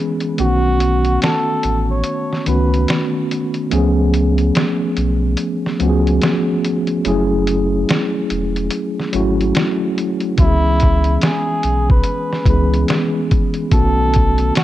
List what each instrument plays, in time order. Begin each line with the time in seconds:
Already playing: tine electric piano E3 G#3 B3 C#4 G#4
0.20 closed hi-hat
0.38 sub bass B1, tine electric piano D#3 A3 B3 C#4 F#4, muted trumpet F#4, closed hi-hat
0.80 closed hi-hat
1.05 closed hi-hat
1.22 muted trumpet A4, snare, closed hi-hat
1.63 sub bass A1, closed hi-hat
1.91 muted trumpet C#5
2.04 closed hi-hat
2.33 snare
2.46 sub bass C#2, tine electric piano D#3 A3 B3 C#4 F#4, muted trumpet B4, closed hi-hat
2.74 closed hi-hat
2.88 snare, closed hi-hat
3.31 closed hi-hat
3.54 closed hi-hat
3.70 sub bass C#2, tine electric piano F3 A3 B3 C#4 G#4, closed hi-hat
4.14 closed hi-hat
4.38 closed hi-hat
4.55 snare, closed hi-hat
4.97 sub bass B1, closed hi-hat
5.37 closed hi-hat
5.66 snare
5.79 sub bass C#2, tine electric piano F3 A3 B3 C#4 F#4, closed hi-hat
5.89 tine electric piano G#4
6.07 closed hi-hat
6.22 snare, closed hi-hat
6.65 closed hi-hat
6.87 closed hi-hat
7.05 sub bass F#1, tine electric piano F#3 A3 C#4 E4 G#4, closed hi-hat
7.47 closed hi-hat
7.89 snare, closed hi-hat
8.30 sub bass E1, closed hi-hat
8.56 closed hi-hat
8.71 closed hi-hat
9.00 snare
9.13 sub bass G#1, tine electric piano F#3 A3 C#4 E4 F#4, closed hi-hat
9.41 closed hi-hat
9.55 snare, closed hi-hat
9.98 closed hi-hat
10.20 closed hi-hat
10.36 sub bass C#2, tine electric piano E3 G#3 B3 C#4 F#4, kick, closed hi-hat
10.41 muted trumpet E4
10.46 tine electric piano G#4
10.80 kick, closed hi-hat
11.04 closed hi-hat
11.22 muted trumpet G#4, snare, closed hi-hat
11.63 sub bass B1, closed hi-hat
11.90 muted trumpet B4, kick
12.04 closed hi-hat
12.33 snare
12.46 sub bass C#2, tine electric piano E3 G#3 B3 C#4 G#4, muted trumpet B4, kick, closed hi-hat
12.74 closed hi-hat
12.88 snare, closed hi-hat
13.31 kick, closed hi-hat
13.54 closed hi-hat
13.71 sub bass B1, tine electric piano D#3 A3 B3 C#4 F#4, muted trumpet A4, kick, closed hi-hat
14.14 kick, closed hi-hat
14.38 closed hi-hat
14.55 muted trumpet F#4, snare, closed hi-hat